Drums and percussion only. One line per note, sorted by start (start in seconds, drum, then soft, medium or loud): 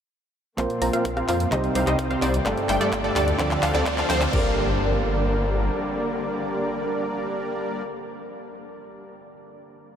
0.58 kick loud
0.58 clap soft
0.58 closed hi-hat medium
0.70 closed hi-hat soft
0.82 open hi-hat loud
0.93 closed hi-hat medium
1.05 kick loud
1.05 closed hi-hat medium
1.17 cross-stick medium
1.17 closed hi-hat soft
1.29 clap medium
1.29 open hi-hat loud
1.40 closed hi-hat medium
1.52 kick loud
1.52 clap medium
1.52 closed hi-hat medium
1.64 closed hi-hat soft
1.75 open hi-hat loud
1.87 cross-stick medium
1.87 clap medium
1.87 closed hi-hat medium
1.99 kick loud
1.99 closed hi-hat medium
2.11 closed hi-hat soft
2.22 clap medium
2.22 open hi-hat loud
2.34 closed hi-hat medium
2.46 kick loud
2.46 clap medium
2.46 closed hi-hat medium
2.57 closed hi-hat soft
2.69 clap medium
2.69 open hi-hat loud
2.81 closed hi-hat medium
2.93 kick loud
2.93 clap medium
2.93 closed hi-hat medium
3.04 closed hi-hat soft
3.16 clap medium
3.16 open hi-hat loud
3.28 closed hi-hat medium
3.39 kick loud
3.39 clap loud
3.39 closed hi-hat medium
3.51 clap medium
3.51 closed hi-hat soft
3.63 clap loud
3.63 open hi-hat loud
3.75 clap medium
3.75 closed hi-hat medium
3.86 kick loud
3.86 clap loud
3.86 closed hi-hat medium
3.98 clap medium
3.98 closed hi-hat soft
4.10 clap loud
4.10 open hi-hat loud
4.22 clap loud
4.22 closed hi-hat medium
4.33 kick loud
4.33 crash medium